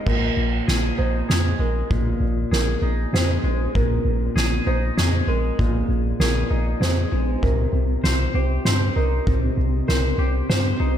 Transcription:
0.06 sub bass A#1, clean electric guitar A#2, felt piano A#4, kick, crash
0.37 sub bass A#1
0.68 sub bass A#1, clean electric guitar G#4, snare, ride
0.98 sub bass A#1, clean electric guitar D#4, felt piano C5
1.29 sub bass F2, clean electric guitar G#4, snare, ride
1.59 sub bass A#1, clean electric guitar G#3, felt piano A#4
1.90 sub bass A#1, clean electric guitar A#2, kick, ride
2.20 sub bass A#1
2.51 sub bass A#1, clean electric guitar G#4, felt piano A#4, snare, ride
2.82 sub bass A#1, clean electric guitar D#4
3.13 sub bass F2, clean electric guitar G#4, felt piano C5, snare, ride
3.44 sub bass A#1, clean electric guitar G#3, ride
3.75 sub bass A#1, clean electric guitar A#2, felt piano A#4, kick, ride
4.05 sub bass A#1
4.36 sub bass A#1, clean electric guitar G#4, snare, ride
4.67 sub bass A#1, clean electric guitar D#4, felt piano C5
4.97 sub bass F2, clean electric guitar G#4, snare, ride
5.27 sub bass A#1, clean electric guitar G#3, felt piano A#4
5.59 sub bass A#1, clean electric guitar A#2, kick, ride
5.89 sub bass A#1
6.20 sub bass A#1, clean electric guitar G#4, felt piano A#4, snare, ride
6.51 sub bass A#1, clean electric guitar D#4
6.81 sub bass F2, clean electric guitar G#4, felt piano C5, snare, ride
7.12 sub bass A#1, clean electric guitar G#3, ride
7.42 sub bass C2, clean electric guitar C3, felt piano A#4, kick, ride
7.73 sub bass C2
8.04 sub bass C2, clean electric guitar C5, snare, ride
8.34 sub bass C2, clean electric guitar G4, felt piano C5
8.65 sub bass G2, clean electric guitar C5, snare, ride
8.96 sub bass C2, clean electric guitar D#4, felt piano A#4
9.27 sub bass C2, clean electric guitar C3, kick, ride
9.57 sub bass C2
9.88 sub bass C2, felt piano A#4, clean electric guitar C5, snare, ride
10.18 sub bass C2, clean electric guitar G4
10.49 sub bass G2, felt piano C5, clean electric guitar C5, snare, ride
10.80 sub bass C2, clean electric guitar D#4, ride

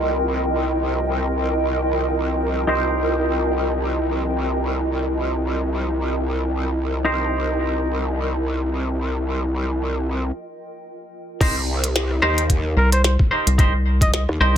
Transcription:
Already playing: wobble bass C2, clean electric guitar D#4 G4 A#4 C5, ambient pad F4 A#4 D#5 G5
2.67 wobble bass C2, clean electric guitar D#4 G4 A#4 C5
7.05 clean electric guitar D#4 G4 A#4 C5
11.41 wobble bass C2, clean electric guitar D#4 G4 A#4 C5, kick, closed hi-hat, crash
11.84 closed hi-hat
11.96 snare, closed hi-hat
12.11 cross-stick
12.22 wobble bass D#2, clean electric guitar D#4 G4 A#4 C5
12.38 closed hi-hat
12.50 kick, closed hi-hat
12.77 analog synth bass C2, trumpet A#4
12.92 trumpet C5, cross-stick, closed hi-hat
13.04 trumpet C5, snare, closed hi-hat
13.19 kick
13.31 clean electric guitar D#4 G4 A#4 C5
13.47 analog synth bass C2, closed hi-hat
13.58 clean electric guitar D#4 G4 A#4 C5, kick, closed hi-hat
14.01 trumpet D#5, kick, closed hi-hat
14.14 trumpet D#5, snare, closed hi-hat
14.29 wobble bass D#2, cross-stick
14.40 analog synth bass C2, clean electric guitar D#4 G4 A#4 C5

